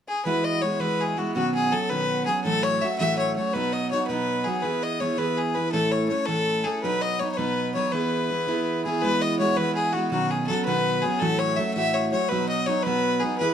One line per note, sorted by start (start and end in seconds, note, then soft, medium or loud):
0.08 0.24 G#4 medium
0.25 0.63 E3 medium
0.25 0.62 G#3 medium
0.25 0.63 B3 medium
0.25 0.63 E4 medium
0.25 0.65 F#4 medium
0.25 0.46 B4 medium
0.45 0.64 D#5 medium
0.62 0.79 G#3 medium
0.62 0.79 B3 soft
0.62 0.80 E4 medium
0.62 0.80 F#4 medium
0.62 0.82 C#5 medium
0.80 1.17 E3 medium
0.80 1.15 G#3 medium
0.80 1.16 B3 medium
0.80 1.17 E4 medium
0.80 1.18 F#4 medium
0.80 1.02 B4 medium
1.01 1.19 G#4 medium
1.16 1.35 G#3 medium
1.16 1.34 B3 medium
1.16 1.35 E4 medium
1.16 1.34 F#4 medium
1.16 1.35 F#4 medium
1.35 1.72 B2 medium
1.35 1.72 D#3 medium
1.35 1.72 F#3 medium
1.35 1.72 B3 medium
1.35 1.73 C#4 medium
1.35 1.53 F#4 medium
1.35 1.74 F#4 medium
1.55 1.74 G#4 medium
1.72 1.90 F#3 medium
1.72 1.90 B3 medium
1.72 1.90 C#4 medium
1.72 1.91 F#4 medium
1.72 1.91 A4 medium
1.90 2.27 B2 medium
1.90 2.28 D#3 medium
1.90 2.26 F#3 medium
1.90 2.26 B3 medium
1.90 2.27 C#4 medium
1.90 2.29 F#4 medium
1.90 2.26 B4 loud
2.26 2.44 F#3 medium
2.26 2.45 B3 medium
2.26 2.44 C#4 medium
2.26 2.45 F#4 medium
2.26 2.43 G#4 medium
2.44 2.82 A2 medium
2.44 2.82 E3 medium
2.44 2.81 F#3 medium
2.44 2.82 A3 medium
2.44 2.82 C#4 medium
2.44 2.83 F#4 medium
2.44 2.65 A4 loud
2.63 2.83 C#5 medium
2.82 2.99 F#3 medium
2.82 3.00 A3 medium
2.82 2.99 C#4 medium
2.82 3.00 F#4 medium
2.82 2.98 E5 medium
2.98 3.37 A2 medium
2.98 3.37 E3 medium
2.98 3.35 F#3 medium
2.98 3.36 A3 medium
2.98 3.37 C#4 medium
2.98 3.38 F#4 medium
2.98 3.17 E5 loud
3.18 3.35 C#5 medium
3.36 3.53 F#3 medium
3.36 3.55 A3 medium
3.36 3.55 C#4 medium
3.36 3.54 F#4 medium
3.36 3.55 C#5 medium
3.54 3.92 B2 medium
3.54 3.91 F#3 medium
3.54 3.91 B3 medium
3.54 3.92 D#4 medium
3.54 3.92 F#4 medium
3.54 3.74 B4 medium
3.73 3.90 D#5 medium
3.91 4.08 F#3 medium
3.91 4.08 B3 medium
3.91 4.09 D#4 medium
3.91 4.09 F#4 medium
3.91 4.07 C#5 medium
4.07 4.46 B2 medium
4.07 4.45 F#3 medium
4.07 4.45 B3 medium
4.07 4.46 D#4 medium
4.07 4.47 F#4 medium
4.07 4.46 B4 loud
4.44 4.63 F#3 medium
4.44 4.63 B3 soft
4.44 4.64 D#4 medium
4.44 4.64 F#4 medium
4.44 4.64 G#4 medium
4.63 4.99 E3 medium
4.63 5.00 B3 medium
4.63 5.00 E4 medium
4.63 5.01 G#4 medium
4.63 4.84 B4 medium
4.83 5.02 D#5 medium
5.00 5.16 E3 medium
5.00 5.16 B3 medium
5.00 5.17 E4 medium
5.00 5.18 G#4 medium
5.00 5.20 C#5 medium
5.17 5.54 E3 medium
5.17 5.55 B3 medium
5.17 5.55 E4 medium
5.17 5.56 G#4 medium
5.17 5.39 B4 medium
5.38 5.56 G#4 medium
5.55 5.72 E3 medium
5.55 5.73 B3 medium
5.55 5.73 E4 medium
5.55 5.74 G#4 medium
5.55 5.71 B4 medium
5.72 6.10 A2 medium
5.72 6.11 E3 medium
5.72 6.09 A3 medium
5.72 6.10 C#4 medium
5.72 6.10 E4 medium
5.72 5.93 A4 medium
5.72 6.11 A4 medium
5.92 6.08 C#5 medium
6.09 6.27 A3 medium
6.09 6.28 C#4 medium
6.09 6.28 E4 medium
6.09 6.28 A4 soft
6.09 6.28 C#5 medium
6.26 6.65 A2 medium
6.26 6.66 E3 medium
6.26 6.64 A3 medium
6.26 6.65 C#4 medium
6.26 6.66 E4 medium
6.26 6.66 A4 loud
6.26 6.66 A4 medium
6.64 6.83 A3 medium
6.64 6.84 C#4 medium
6.64 6.84 E4 medium
6.64 6.82 G#4 medium
6.64 6.84 A4 medium
6.82 7.21 B2 medium
6.82 7.19 F#3 medium
6.82 7.20 B3 medium
6.82 7.21 D#4 medium
6.82 7.04 B4 medium
6.82 7.22 B4 medium
7.02 7.21 D#5 medium
7.20 7.37 F#3 medium
7.20 7.38 B3 medium
7.20 7.38 D#4 medium
7.20 7.38 B4 medium
7.20 7.31 C#5 medium
7.31 7.39 C#5 medium
7.37 7.75 B2 medium
7.37 7.74 F#3 medium
7.37 7.75 B3 medium
7.37 7.76 D#4 medium
7.37 7.74 B4 medium
7.37 7.77 B4 medium
7.75 7.92 F#3 medium
7.75 7.92 B3 medium
7.75 7.94 D#4 medium
7.75 7.94 B4 medium
7.75 7.93 C#5 medium
7.92 8.29 E3 medium
7.92 8.31 B3 medium
7.92 8.31 E4 medium
7.92 8.31 G#4 medium
7.92 8.84 B4 medium
8.30 8.46 E3 medium
8.30 8.47 B3 medium
8.30 8.47 E4 medium
8.30 8.47 G#4 medium
8.47 8.84 E3 medium
8.47 8.86 B3 medium
8.47 8.85 E4 medium
8.47 8.85 G#4 medium
8.85 9.02 E3 medium
8.85 9.02 B3 medium
8.85 9.03 E4 medium
8.85 9.03 G#4 medium
8.85 9.04 G#4 medium
9.02 9.40 E3 medium
9.02 9.38 G#3 medium
9.02 9.39 B3 medium
9.02 9.40 E4 medium
9.02 9.41 F#4 medium
9.02 9.23 B4 loud
9.22 9.39 D#5 medium
9.39 9.55 G#3 medium
9.39 9.56 B3 medium
9.39 9.56 E4 medium
9.39 9.56 F#4 medium
9.39 9.58 C#5 medium
9.56 9.94 E3 medium
9.56 9.93 G#3 medium
9.56 9.94 B3 medium
9.56 9.94 E4 medium
9.56 9.96 F#4 medium
9.56 9.75 B4 loud
9.76 9.95 G#4 medium
9.93 10.12 G#3 medium
9.93 10.11 B3 medium
9.93 10.12 E4 medium
9.93 10.11 F#4 medium
9.93 10.12 F#4 medium
10.11 10.49 B2 medium
10.11 10.49 D#3 medium
10.11 10.48 F#3 medium
10.11 10.48 B3 medium
10.11 10.49 C#4 medium
10.11 10.32 F#4 medium
10.11 10.51 F#4 medium
10.31 10.46 G#4 medium
10.47 10.66 F#3 medium
10.47 10.66 B3 medium
10.47 10.67 C#4 medium
10.47 10.64 A4 medium
10.51 10.67 F#4 medium
10.65 11.04 B2 medium
10.65 11.04 D#3 medium
10.65 11.03 F#3 medium
10.65 11.03 B3 medium
10.65 11.04 C#4 medium
10.65 11.05 F#4 medium
10.65 11.03 B4 loud
11.02 11.20 F#3 medium
11.02 11.21 B3 medium
11.02 11.21 C#4 medium
11.02 11.21 G#4 medium
11.06 11.21 F#4 medium
11.20 11.58 A2 medium
11.20 11.58 E3 medium
11.20 11.57 F#3 medium
11.20 11.58 A3 medium
11.20 11.59 C#4 medium
11.20 11.59 F#4 medium
11.20 11.41 A4 loud
11.39 11.58 C#5 loud
11.57 11.75 F#3 medium
11.57 11.76 A3 medium
11.57 11.76 C#4 medium
11.57 11.76 F#4 medium
11.57 11.73 E5 medium
11.74 12.13 A2 medium
11.74 12.13 E3 medium
11.74 12.11 F#3 medium
11.74 12.12 A3 medium
11.74 12.13 C#4 medium
11.74 12.13 F#4 medium
11.74 11.96 E5 loud
11.94 12.11 C#5 medium
12.12 12.30 F#3 medium
12.12 12.30 A3 medium
12.12 12.31 C#4 soft
12.12 12.31 F#4 medium
12.12 12.30 C#5 medium
12.29 12.67 B2 medium
12.29 12.66 F#3 medium
12.29 12.67 B3 medium
12.29 12.68 D#4 medium
12.29 12.68 F#4 medium
12.29 12.48 B4 medium
12.49 12.68 D#5 loud
12.66 12.85 F#3 medium
12.66 12.85 B3 medium
12.66 12.86 D#4 medium
12.66 12.86 F#4 medium
12.66 12.85 C#5 medium
12.83 13.22 B2 medium
12.83 13.21 F#3 medium
12.83 13.22 B3 medium
12.83 13.23 D#4 medium
12.83 13.21 B4 loud
12.87 13.23 F#4 medium
13.20 13.40 F#3 medium
13.20 13.40 B3 soft
13.20 13.40 D#4 medium
13.20 13.37 G#4 medium
13.25 13.41 F#4 soft
13.38 13.54 E3 medium
13.38 13.54 B3 medium
13.38 13.54 E4 medium
13.38 13.54 G#4 medium
13.38 13.54 B4 medium